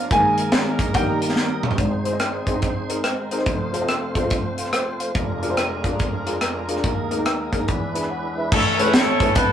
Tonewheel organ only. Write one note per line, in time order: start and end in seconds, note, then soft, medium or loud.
0.11 0.93 G#3 medium
0.11 0.93 A#3 medium
0.11 0.93 D#4 medium
0.11 0.93 A#4 medium
0.94 1.76 G3 medium
0.94 1.76 A#3 medium
0.94 1.76 D#4 medium
0.94 1.76 A#4 medium
1.77 3.42 G#3 medium
1.77 3.43 C4 medium
1.77 3.01 D#4 medium
1.77 3.01 C5 medium
3.03 3.30 A#4 medium
3.32 3.72 D#4 soft
3.32 3.46 C5 medium
3.47 5.12 A3 medium
3.47 5.12 C4 medium
3.47 5.12 F4 medium
3.47 5.12 C5 medium
5.15 6.80 F2 medium
5.15 6.81 G#3 medium
5.15 6.80 D4 medium
5.15 6.80 F4 medium
5.15 6.81 A#4 medium
6.84 6.90 G3 medium
6.84 7.66 A#3 medium
6.84 7.67 D#4 medium
6.84 7.67 A#4 medium
6.89 7.67 G#3 medium
7.68 8.50 G#3 medium
7.68 8.50 D4 medium
7.68 8.50 E4 medium
7.68 8.50 B4 medium